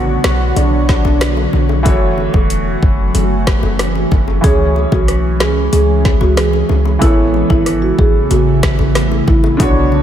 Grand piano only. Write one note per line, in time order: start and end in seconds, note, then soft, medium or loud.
0.00 1.80 D3 medium
0.00 1.81 B3 medium
0.00 1.82 F#4 medium
0.00 1.83 C#5 medium
1.83 4.38 E3 medium
1.83 4.39 A3 medium
1.83 4.40 F#4 medium
1.89 4.41 C#5 medium
4.41 6.96 E3 medium
4.41 6.97 C#4 medium
4.41 6.98 G#4 medium
4.47 6.99 C#5 medium
6.99 9.55 E3 medium
6.99 9.56 B3 medium
6.99 9.56 A4 medium
7.05 9.57 C#5 medium
9.57 10.03 D3 medium
9.57 10.03 B3 medium
9.57 10.03 F#4 medium
9.63 10.03 C#5 medium